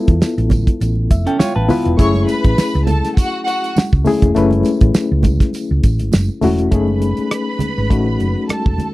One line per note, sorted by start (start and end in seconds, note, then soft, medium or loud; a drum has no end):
0.00 0.41 B3 medium
0.00 0.41 E4 medium
0.00 0.42 F4 medium
0.00 0.42 A4 medium
0.08 0.20 E2 medium
0.08 kick loud
0.08 closed hi-hat soft
0.21 muted fingered electric bass stroke soft
0.21 snare loud
0.21 tambourine medium
0.21 muted conga soft
0.38 0.63 A1 loud
0.38 closed hi-hat soft
0.50 kick medium
0.50 closed hi-hat medium
0.50 tambourine soft
0.50 high conga medium
0.50 low conga medium
0.67 kick medium
0.67 closed hi-hat soft
0.80 1.06 A1 medium
0.80 closed hi-hat medium
0.80 tambourine medium
0.80 muted conga soft
0.95 muted conga soft
1.11 1.25 F1 medium
1.11 1.25 E5 medium
1.11 kick medium
1.11 closed hi-hat medium
1.11 tambourine soft
1.26 1.39 C#4 medium
1.26 1.39 A4 medium
1.26 1.39 G5 medium
1.26 closed hi-hat medium
1.39 1.55 F4 medium
1.39 1.55 C#5 medium
1.39 1.54 F5 medium
1.39 muted fingered electric bass stroke soft
1.39 snare loud
1.39 tambourine medium
1.39 high conga medium
1.55 1.68 A1 medium
1.55 1.97 B4 medium
1.55 1.96 A5 medium
1.68 1.89 B3 medium
1.68 1.89 E4 medium
1.68 1.90 F4 medium
1.68 1.90 B4 loud
1.68 open hi-hat medium
1.68 tambourine medium
1.68 high conga medium
1.68 low conga medium
1.85 1.97 E1 medium
1.85 closed hi-hat medium
1.97 2.25 F#1 loud
1.97 2.77 A3 medium
1.97 2.78 C#4 medium
1.97 2.78 E4 medium
1.97 2.78 G#4 medium
1.97 2.23 C#5 loud
1.97 2.23 C#6 loud
1.97 kick loud
1.97 closed hi-hat medium
1.97 tambourine soft
2.14 closed hi-hat soft
2.14 muted conga soft
2.14 high conga medium
2.27 2.84 B4 loud
2.27 2.84 B5 loud
2.27 closed hi-hat medium
2.27 tambourine soft
2.27 high conga medium
2.44 2.57 A1 medium
2.44 kick loud
2.44 closed hi-hat soft
2.58 snare loud
2.58 tambourine medium
2.74 3.00 C#2 loud
2.74 closed hi-hat soft
2.74 muted conga soft
2.86 3.11 A4 medium
2.86 3.11 A5 medium
2.86 closed hi-hat medium
2.86 high conga medium
2.86 low conga medium
3.05 snare soft
3.05 closed hi-hat soft
3.17 3.41 F#4 loud
3.17 3.41 F#5 loud
3.17 kick medium
3.17 closed hi-hat medium
3.17 tambourine medium
3.17 muted conga soft
3.45 3.70 F#4 loud
3.45 3.69 F#5 loud
3.45 closed hi-hat medium
3.45 tambourine soft
3.64 closed hi-hat medium
3.76 muted fingered electric bass stroke soft
3.76 snare loud
3.76 tambourine medium
3.76 high conga medium
3.93 4.04 C#2 medium
3.93 kick loud
3.93 muted conga soft
4.05 4.26 A3 medium
4.05 4.26 C#4 medium
4.05 4.27 E4 medium
4.05 4.27 G#4 loud
4.05 open hi-hat medium
4.05 tambourine medium
4.05 high conga medium
4.05 low conga medium
4.22 4.34 E1 medium
4.22 kick medium
4.22 closed hi-hat soft
4.35 4.61 F#1 medium
4.35 5.14 A3 medium
4.35 5.15 C#4 medium
4.35 5.15 E4 medium
4.35 5.16 B4 medium
4.35 closed hi-hat medium
4.35 tambourine soft
4.35 muted conga soft
4.51 closed hi-hat soft
4.51 muted conga soft
4.51 high conga medium
4.63 closed hi-hat medium
4.63 tambourine soft
4.63 high conga medium
4.81 4.93 A1 medium
4.81 kick medium
4.81 closed hi-hat soft
4.94 snare loud
4.94 tambourine medium
4.94 muted conga soft
5.11 5.37 C#2 medium
5.23 kick medium
5.23 closed hi-hat medium
5.23 tambourine soft
5.23 high conga medium
5.23 low conga medium
5.40 kick medium
5.40 snare soft
5.40 closed hi-hat soft
5.53 closed hi-hat medium
5.53 tambourine medium
5.53 muted conga soft
5.71 5.82 C#2 medium
5.83 5.98 A1 medium
5.83 kick medium
5.83 closed hi-hat medium
5.83 tambourine soft
5.99 6.12 G#1 medium
5.99 closed hi-hat medium
6.12 6.27 F#1 medium
6.12 snare loud
6.12 tambourine medium
6.12 muted conga soft
6.12 high conga medium
6.29 muted conga soft
6.41 6.69 E1 medium
6.41 6.62 A3 medium
6.41 6.63 C#4 medium
6.41 6.63 E4 medium
6.41 6.64 F#4 medium
6.41 snare soft
6.41 open hi-hat medium
6.41 tambourine medium
6.41 high conga medium
6.41 low conga medium
6.59 closed hi-hat soft
6.71 7.12 F#1 loud
6.71 7.51 A3 medium
6.71 7.52 C#4 medium
6.71 7.52 D#4 medium
6.71 7.53 G#4 medium
6.71 8.46 B4 medium
6.71 8.46 B5 medium
6.71 kick medium
6.71 closed hi-hat medium
6.88 high conga medium
7.00 closed hi-hat medium
7.00 high conga medium
7.17 muted fingered electric bass stroke soft
7.17 closed hi-hat soft
7.31 cross-stick loud
7.31 closed hi-hat medium
7.59 muted fingered electric bass stroke soft
7.59 closed hi-hat medium
7.59 high conga medium
7.59 low conga medium
7.78 7.89 G#1 medium
7.78 cross-stick soft
7.90 8.16 A1 medium
7.90 8.70 A3 medium
7.90 8.70 C#4 medium
7.90 8.71 D#4 medium
7.90 8.71 F#4 medium
7.90 kick medium
7.90 closed hi-hat medium
7.90 muted conga soft
8.19 8.34 F#1 medium
8.19 closed hi-hat soft
8.19 high conga soft
8.49 8.94 A4 medium
8.49 8.94 A5 medium
8.49 muted fingered electric bass stroke soft
8.49 cross-stick loud
8.49 closed hi-hat medium
8.49 high conga medium
8.66 8.78 E1 medium
8.66 kick loud
8.78 closed hi-hat medium
8.78 high conga medium
8.78 low conga medium